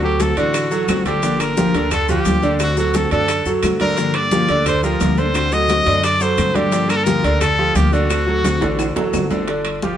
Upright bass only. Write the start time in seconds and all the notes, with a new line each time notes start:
Already playing: D2
0.36 A1
0.89 G1
1.74 D2
2.26 D2
3.12 F#2
3.46 F#2
3.63 G2
4.49 D2
5.00 D2
5.87 F#2
6.38 G2
7.24 D2
7.75 D2
8.62 A1
8.96 A1
9.14 G1